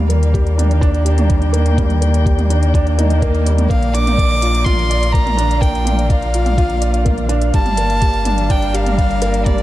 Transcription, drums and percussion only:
0.10 closed hi-hat
0.23 closed hi-hat
0.34 kick, closed hi-hat
0.47 closed hi-hat
0.59 closed hi-hat, mid tom
0.71 closed hi-hat
0.82 kick, closed hi-hat
0.94 closed hi-hat
1.06 closed hi-hat
1.18 closed hi-hat, mid tom
1.30 kick, closed hi-hat
1.42 closed hi-hat
1.54 closed hi-hat
1.66 closed hi-hat
1.78 kick, closed hi-hat, mid tom
1.90 closed hi-hat
2.02 closed hi-hat
2.14 closed hi-hat
2.26 kick, closed hi-hat
2.39 closed hi-hat, mid tom
2.50 closed hi-hat
2.63 closed hi-hat
2.74 kick, closed hi-hat
2.87 closed hi-hat
2.99 closed hi-hat, mid tom
3.10 closed hi-hat
3.22 kick, closed hi-hat
3.35 closed hi-hat
3.46 closed hi-hat
3.58 closed hi-hat, mid tom
3.70 kick, closed hi-hat
3.82 closed hi-hat
3.95 closed hi-hat
4.07 closed hi-hat, mid tom
4.18 kick, closed hi-hat
4.31 closed hi-hat
4.42 closed hi-hat
4.55 closed hi-hat
4.66 kick, closed hi-hat, mid tom
4.79 closed hi-hat
4.91 closed hi-hat
5.03 closed hi-hat
5.14 kick, closed hi-hat
5.27 closed hi-hat, mid tom
5.39 closed hi-hat
5.51 closed hi-hat
5.62 kick, closed hi-hat
5.75 closed hi-hat
5.87 closed hi-hat, mid tom
5.99 closed hi-hat
6.10 kick, closed hi-hat
6.22 closed hi-hat
6.34 closed hi-hat
6.46 closed hi-hat, mid tom
6.58 kick, closed hi-hat
6.70 closed hi-hat
6.82 closed hi-hat
6.94 closed hi-hat
7.06 kick, closed hi-hat, mid tom
7.18 closed hi-hat
7.29 closed hi-hat
7.42 closed hi-hat
7.54 kick, closed hi-hat
7.66 closed hi-hat, mid tom
7.77 closed hi-hat
7.90 closed hi-hat
8.02 kick, closed hi-hat
8.14 closed hi-hat
8.25 closed hi-hat, mid tom
8.38 closed hi-hat
8.50 kick, closed hi-hat
8.62 closed hi-hat
8.75 closed hi-hat
8.86 closed hi-hat, mid tom
8.98 kick, closed hi-hat
9.11 closed hi-hat
9.22 closed hi-hat
9.34 closed hi-hat
9.46 kick, closed hi-hat, mid tom
9.58 closed hi-hat

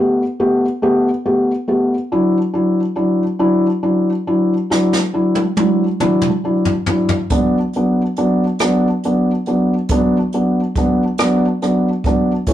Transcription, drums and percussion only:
4.72 snare
4.93 snare
5.35 high tom
5.57 high tom
6.00 mid tom
6.21 mid tom
6.65 floor tom
6.86 floor tom
7.09 floor tom
7.30 kick, closed hi-hat
7.73 closed hi-hat
8.16 closed hi-hat
8.59 cross-stick, closed hi-hat
9.03 closed hi-hat
9.46 closed hi-hat
9.89 kick, closed hi-hat
10.32 closed hi-hat
10.76 kick, closed hi-hat
11.18 cross-stick, closed hi-hat
11.62 cross-stick, closed hi-hat
12.04 kick, closed hi-hat
12.47 kick, closed hi-hat

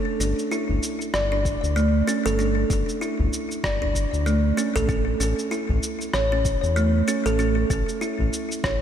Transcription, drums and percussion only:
0.21 cabasa
0.39 cabasa
0.52 cabasa
0.69 udu
0.83 cabasa
1.01 cabasa
1.14 cross-stick, cabasa
1.45 kick, cabasa
1.64 cabasa
1.77 cabasa
2.08 cabasa
2.26 cabasa
2.40 cabasa
2.70 kick, cabasa
2.89 cabasa
3.02 cabasa
3.20 udu
3.33 cabasa
3.51 cabasa
3.64 kick, cross-stick, cabasa
3.82 udu
3.95 kick, cabasa
4.14 cabasa
4.27 cabasa
4.58 cabasa
4.76 udu, cabasa
4.89 kick, cabasa
5.21 cabasa
5.39 cabasa
5.52 cabasa
5.69 udu
5.83 cabasa
6.01 cabasa
6.14 cross-stick, cabasa
6.45 kick, cabasa
6.64 cabasa
6.77 cabasa
7.08 cabasa
7.26 cabasa
7.39 cabasa
7.70 kick, cabasa
7.89 cabasa
8.02 cabasa
8.19 udu
8.33 cabasa
8.51 cabasa
8.64 kick, cross-stick, cabasa

